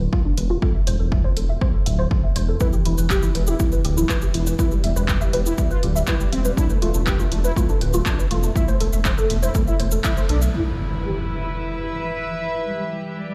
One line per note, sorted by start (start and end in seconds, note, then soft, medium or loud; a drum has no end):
0.00 0.08 B4 medium
0.13 0.20 F4 loud
0.13 kick loud
0.25 0.33 D4 medium
0.37 0.58 E1 medium
0.37 0.45 B4 medium
0.37 closed hi-hat loud
0.50 0.58 F4 medium
0.62 0.70 A4 medium
0.62 kick loud
0.75 0.82 E5 medium
0.87 0.97 E1 medium
0.87 0.95 C5 loud
0.87 closed hi-hat loud
1.00 1.20 E1 medium
1.00 1.07 A4 medium
1.12 1.20 E5 medium
1.12 kick loud
1.24 1.32 C5 loud
1.37 1.57 E1 medium
1.37 1.44 A4 medium
1.37 closed hi-hat loud
1.49 1.57 E5 medium
1.61 1.69 C5 loud
1.61 kick loud
1.74 1.82 A4 medium
1.86 2.06 D1 loud
1.86 1.94 E5 medium
1.86 closed hi-hat loud
1.99 2.06 C5 loud
2.11 2.19 A4 medium
2.11 kick loud
2.24 2.31 E5 medium
2.36 2.56 E1 medium
2.36 2.44 C5 loud
2.36 closed hi-hat loud
2.48 2.56 A4 medium
2.60 2.68 E4 medium
2.60 2.68 B4 medium
2.60 kick loud
2.60 cabasa medium
2.73 2.80 E3 medium
2.73 2.81 G4 medium
2.73 cabasa soft
2.85 2.96 E1 medium
2.85 2.93 E3 medium
2.85 2.93 E4 medium
2.85 closed hi-hat loud
2.98 3.18 E1 medium
2.98 3.05 E3 medium
2.98 3.05 B4 medium
2.98 cabasa medium
3.10 3.17 G4 medium
3.10 3.18 G4 loud
3.10 kick loud
3.10 clap loud
3.10 cabasa medium
3.22 3.30 E3 medium
3.22 3.30 E4 medium
3.22 cabasa soft
3.35 3.55 E1 medium
3.35 3.42 E3 medium
3.35 3.43 B4 medium
3.35 closed hi-hat loud
3.47 3.55 E4 medium
3.47 3.55 G4 loud
3.47 cabasa medium
3.60 3.67 E3 medium
3.60 3.68 E4 medium
3.60 kick loud
3.60 cabasa medium
3.72 3.79 E3 medium
3.72 3.80 B4 medium
3.72 cabasa soft
3.85 4.05 D1 loud
3.85 3.92 G4 medium
3.85 closed hi-hat loud
3.97 4.04 E3 medium
3.97 4.05 E4 medium
3.97 cabasa medium
4.09 4.17 E3 medium
4.09 4.17 B4 medium
4.09 kick loud
4.09 clap loud
4.09 cabasa medium
4.22 4.29 G4 medium
4.22 cabasa soft
4.34 4.54 E1 medium
4.34 4.41 E3 medium
4.34 4.42 E4 medium
4.34 closed hi-hat loud
4.47 4.54 E3 medium
4.47 4.54 B4 medium
4.47 cabasa medium
4.59 4.66 E4 medium
4.59 4.67 B4 loud
4.59 kick loud
4.59 cabasa medium
4.71 4.79 G3 medium
4.71 4.79 G4 medium
4.71 cabasa soft
4.84 4.94 E1 loud
4.84 4.91 G3 medium
4.84 4.91 E5 medium
4.84 closed hi-hat medium
4.96 5.16 E1 medium
4.96 5.03 G3 medium
4.96 5.04 B4 loud
4.96 cabasa medium
5.09 5.16 G4 medium
5.09 kick loud
5.09 clap loud
5.09 cabasa medium
5.21 5.28 G3 medium
5.21 5.29 E5 medium
5.21 cabasa soft
5.33 5.53 E1 medium
5.33 5.41 G3 medium
5.33 5.41 B4 medium
5.33 closed hi-hat loud
5.46 5.53 E4 medium
5.46 5.53 G4 medium
5.46 cabasa medium
5.58 5.65 G3 medium
5.58 5.66 E5 medium
5.58 kick loud
5.58 cabasa medium
5.71 5.78 F4 medium
5.71 5.78 B4 loud
5.71 cabasa soft
5.83 6.03 D1 loud
5.83 5.90 G3 medium
5.83 5.91 G4 medium
5.83 closed hi-hat loud
5.95 6.03 G3 medium
5.95 6.03 E5 medium
5.95 cabasa medium
6.07 6.15 E4 medium
6.07 6.15 B4 loud
6.07 kick loud
6.07 clap loud
6.07 cabasa medium
6.20 6.27 G3 medium
6.20 6.28 G4 medium
6.20 cabasa soft
6.32 6.53 E1 medium
6.32 6.40 C4 medium
6.32 6.40 E5 medium
6.32 closed hi-hat loud
6.45 6.52 G3 medium
6.45 6.53 B4 loud
6.45 cabasa medium
6.57 6.65 D4 medium
6.57 6.65 E4 loud
6.57 kick loud
6.57 cabasa medium
6.70 6.77 A3 medium
6.70 6.77 B4 medium
6.70 cabasa soft
6.82 6.92 E1 loud
6.82 6.89 A3 medium
6.82 6.90 F4 loud
6.82 closed hi-hat medium
6.94 7.15 E1 medium
6.94 7.02 A3 medium
6.94 7.02 D4 medium
6.94 cabasa medium
7.07 7.14 G4 medium
7.07 7.15 B4 medium
7.07 kick loud
7.07 clap loud
7.07 cabasa medium
7.19 7.27 A3 medium
7.19 7.27 F4 loud
7.19 cabasa soft
7.32 7.52 E1 medium
7.32 7.39 A3 medium
7.32 7.39 D4 medium
7.32 closed hi-hat medium
7.44 7.51 E4 medium
7.44 7.52 B4 medium
7.44 cabasa medium
7.56 7.64 A3 medium
7.56 7.64 F4 loud
7.56 kick loud
7.56 cabasa medium
7.69 7.76 A3 medium
7.69 7.77 D4 medium
7.69 cabasa soft
7.81 8.01 D1 loud
7.81 7.89 B4 medium
7.81 closed hi-hat medium
7.93 8.01 A3 medium
7.93 8.01 F4 loud
7.93 cabasa medium
8.06 8.13 A3 medium
8.06 8.14 D4 medium
8.06 kick loud
8.06 clap loud
8.06 cabasa medium
8.19 8.26 B4 medium
8.19 cabasa soft
8.31 8.51 E1 medium
8.31 8.38 A3 medium
8.31 8.39 F4 loud
8.31 closed hi-hat loud
8.43 8.51 A3 medium
8.43 8.51 D4 medium
8.43 cabasa medium
8.56 8.63 E4 medium
8.56 8.63 E5 medium
8.56 kick loud
8.56 cabasa medium
8.68 8.75 A3 medium
8.68 8.76 C5 loud
8.68 cabasa soft
8.80 8.91 E1 medium
8.80 8.88 A3 medium
8.80 8.88 A4 medium
8.80 closed hi-hat loud
8.93 9.13 E1 medium
8.93 9.00 A3 medium
8.93 9.01 E5 medium
8.93 cabasa medium
9.05 9.13 C5 loud
9.05 kick loud
9.05 clap loud
9.05 cabasa medium
9.18 9.25 A3 medium
9.18 9.25 A4 medium
9.18 cabasa soft
9.30 9.50 E1 medium
9.30 9.37 A3 medium
9.30 9.38 E5 medium
9.30 closed hi-hat loud
9.43 9.50 E4 medium
9.43 9.50 C5 loud
9.43 cabasa medium
9.55 9.62 A3 medium
9.55 9.63 A4 medium
9.55 kick loud
9.55 cabasa medium
9.67 9.74 E4 medium
9.67 9.75 E5 medium
9.67 cabasa soft
9.80 10.00 E1 medium
9.80 9.87 A3 medium
9.80 9.87 C5 loud
9.80 closed hi-hat loud
9.91 9.99 A3 medium
9.91 10.00 A4 medium
9.91 cabasa medium
10.04 10.12 E4 medium
10.04 10.12 E5 medium
10.04 kick loud
10.04 clap loud
10.04 cabasa medium
10.17 10.24 A3 medium
10.17 10.25 C5 loud
10.17 cabasa soft
10.29 10.49 B1 medium
10.29 10.36 D4 medium
10.29 10.37 A4 medium
10.29 closed hi-hat loud
10.42 10.49 A3 medium
10.42 10.49 E5 medium
10.42 cabasa medium
10.54 13.32 E4 medium
10.54 10.61 E4 medium
10.54 impact medium
10.67 10.74 E3 medium
10.79 10.86 E3 medium
10.91 10.98 E3 medium
10.91 13.32 B4 medium
11.04 11.11 G4 medium
11.16 11.23 E3 medium
11.28 11.36 E3 medium
11.28 13.32 E5 medium
11.41 11.48 E4 medium
11.53 11.60 E3 medium
11.66 11.73 E3 medium
11.91 11.98 E3 medium
12.03 12.10 E3 medium
12.28 12.35 E3 medium
12.40 12.47 E3 medium
12.52 13.34 E3 medium
12.52 12.60 E4 medium
12.65 12.72 G3 medium
12.69 13.34 G4 medium
12.77 12.84 G3 medium
12.90 12.97 G3 medium
13.14 13.22 G3 medium
13.14 13.34 D5 medium
13.27 13.34 G3 medium